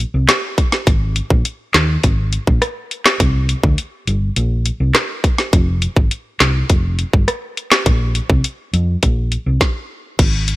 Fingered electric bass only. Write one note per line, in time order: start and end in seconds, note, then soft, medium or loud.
0.14 0.25 C2 medium
0.87 1.20 G#1 loud
1.30 1.41 A#1 medium
1.74 1.96 D#2 medium
2.04 2.37 G#1 loud
2.47 2.58 A#1 medium
3.20 3.53 C2 loud
3.64 3.75 D2 medium
4.07 4.29 G1 loud
4.37 4.69 A#1 loud
4.80 4.91 C2 medium
5.53 5.86 F1 loud
5.97 6.08 G#1 medium
6.40 6.62 C2 loud
6.70 7.03 F1 loud
7.13 7.24 G1 medium
7.86 8.19 A#1 loud
8.30 8.41 C2 medium
8.73 8.95 F2 medium
9.03 9.36 A#1 loud
9.46 9.57 C2 medium
10.19 10.52 G#1 loud